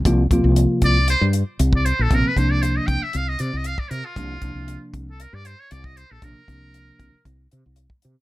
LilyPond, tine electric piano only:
\new Staff \with { instrumentName = "Tine electric piano" } { \clef bass \time 4/4 \key c \minor \tempo 4 = 117 <c f bes f'>8 <c f bes f'>4~ <c f bes f'>16 r2 r16 | <c f bes c'>8 <c f bes d'>4~ <c f bes d'>16 r2 r16 | <c f bes d'>8 <c f bes d'>4~ <c f bes d'>16 r2 r16 | <c f bes d'>8 <c f bes d'>4~ <c f bes d'>16 r2 r16 | }